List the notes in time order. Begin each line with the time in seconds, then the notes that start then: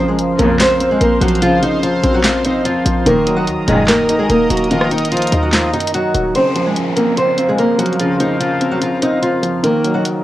Already playing: A#1 C#3 A#4 C5 F5 C6
0.00 F3
0.08 G#3 G#4
0.19 closed hi-hat
0.38 A#1 F2 C#3 F3 A#3 C4 A#4, closed hi-hat
0.59 C4 C5, snare, clap, closed hi-hat
0.80 C4, closed hi-hat
0.91 G#3 G#4
1.01 A#1 A#3 A#4, closed hi-hat
1.21 A#1 F3 F#3 F#4, closed hi-hat
1.28 closed hi-hat
1.35 closed hi-hat
1.42 C#3 F3 F4, closed hi-hat
1.62 F3 D#4 D#5, closed hi-hat
1.83 G#1 F3 F4, closed hi-hat
2.04 A#1 C4, closed hi-hat
2.14 F#3 F#4
2.24 F3 F4, snare, clap, closed hi-hat
2.45 C4 D#4 D#5, closed hi-hat
2.65 F2 F3 F4, closed hi-hat
2.76 A#1
2.85 A#1 F3, closed hi-hat
3.06 D#1 F#2 A#2 D#3 A#3 A#4 D#5 A#5 D#6, closed hi-hat
3.27 F#3, closed hi-hat
3.37 F#3 F#4
3.47 D#2, closed hi-hat
3.58 D#1
3.68 D#1 F#2 A#2 D#3 G#3 D#4 G#4, closed hi-hat
3.88 A#3 A#4, snare, clap, closed hi-hat
4.08 C#1 D#4, closed hi-hat
4.19 D#1 G#3 G#4
4.30 D#1 A#3 A#4, closed hi-hat
4.50 D#1 F#3 A#3 F#4, closed hi-hat
4.57 closed hi-hat
4.64 closed hi-hat
4.71 D#3 F3 F4, closed hi-hat
4.81 cross-stick
4.91 D#4 D#5, closed hi-hat
4.98 closed hi-hat
5.05 closed hi-hat
5.12 F#1 F3 F4, closed hi-hat
5.17 closed hi-hat
5.22 D#1, closed hi-hat
5.27 closed hi-hat
5.32 D#2 D#4, closed hi-hat
5.43 F#3 F#4
5.52 F3 F4, snare, clap, closed hi-hat
5.73 F#2 D#4 D#5, closed hi-hat
5.80 closed hi-hat
5.87 closed hi-hat
5.94 F#3 F#4, closed hi-hat
6.14 D#1 F#3, closed hi-hat
6.35 C#3 C4 A#4 C5 F5, closed hi-hat, downlifter
6.56 F3, closed hi-hat
6.66 G#3 G#4
6.76 closed hi-hat
6.96 A#3 C4 A#4, closed hi-hat
7.17 C4 C5, closed hi-hat
7.38 C4, closed hi-hat
7.49 G#3 G#4
7.58 A#3 A#4, closed hi-hat
7.78 F3 F#3 F#4, closed hi-hat
7.86 closed hi-hat
7.93 closed hi-hat
8.00 C#3 F3 F4, closed hi-hat
8.20 F3 D#4 D#5, closed hi-hat
8.40 F3 F4, closed hi-hat
8.61 C4, closed hi-hat
8.71 F#3 F#4
8.82 F3 F4, closed hi-hat
9.02 C4 D#4 D#5, closed hi-hat
9.22 F3 F4, closed hi-hat
9.43 F3, closed hi-hat
9.63 D#3 A#3 D#4 A#4 D#5, closed hi-hat
9.84 F#3, closed hi-hat
9.94 F#3 F#4
10.05 closed hi-hat